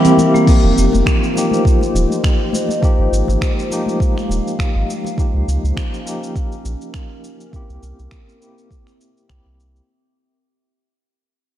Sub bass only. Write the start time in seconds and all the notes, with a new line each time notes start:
0.64 F1
0.78 F1
0.94 F1
1.95 D#1
2.99 G#1
3.12 G#1
3.28 G#1
4.29 D#1
4.75 G#1
5.34 C#2
5.48 C#2
5.64 C#2
6.65 A#1
7.70 C2
7.82 C2
7.99 C2
9.30 C2
9.45 C2